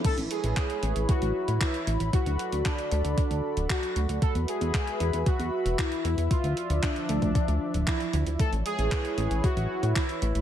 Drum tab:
CC |x---------------|----------------|----------------|----------------|
HH |xxxxxxxxxx-xxxxx|xxxxxxxxxx-xxxxx|xxxxxxxxxx-xxxxx|xxxxxxxxxx-xxxxx|
CP |----x-------x---|----x-------x---|----x-------x---|----x-------x---|
BD |o---o---o---o---|o---o---o---o---|o---o---o---o---|o---o--oo---o---|

CC |----------------|
HH |xxxxxxxxxx-xxxxx|
CP |----x-------x---|
BD |o---o---o---o---|